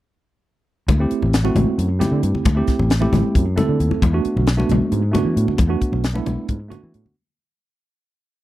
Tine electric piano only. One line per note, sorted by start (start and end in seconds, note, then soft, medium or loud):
1.00 1.34 A3 medium
1.00 1.34 C4 medium
1.00 1.35 E4 medium
1.00 1.35 G4 medium
1.44 1.87 A3 medium
1.44 1.88 C4 medium
1.44 1.88 E4 medium
1.44 1.88 F#4 loud
1.99 2.43 A3 medium
1.99 2.43 C4 medium
1.99 2.43 E4 medium
1.99 2.44 G4 medium
2.55 2.90 A3 medium
2.55 2.91 C4 medium
2.55 2.91 E4 medium
2.55 2.91 G4 medium
3.00 3.44 A3 medium
3.00 3.44 C4 medium
3.00 3.45 E4 medium
3.00 3.45 G4 medium
3.56 4.00 A3 medium
3.56 4.00 C4 medium
3.56 4.00 E4 medium
3.56 4.01 A4 medium
4.13 4.48 A3 medium
4.13 4.48 B3 medium
4.13 4.48 D4 medium
4.13 4.49 F#4 medium
4.57 5.01 A3 medium
4.57 5.01 B3 medium
4.57 5.01 D4 medium
4.57 5.02 F#4 medium
5.12 5.56 A3 medium
5.12 5.57 B3 medium
5.12 5.57 D4 medium
5.12 5.57 F#4 loud
5.68 6.04 A3 medium
5.68 6.04 B3 medium
5.68 6.05 D4 medium
5.68 6.05 F#4 medium
6.14 6.58 A3 medium
6.14 6.58 B3 medium
6.14 6.59 D4 medium
6.14 6.59 E4 medium
6.68 7.13 A3 medium
6.68 7.14 B3 medium
6.68 7.14 D4 medium
6.68 7.14 F#4 loud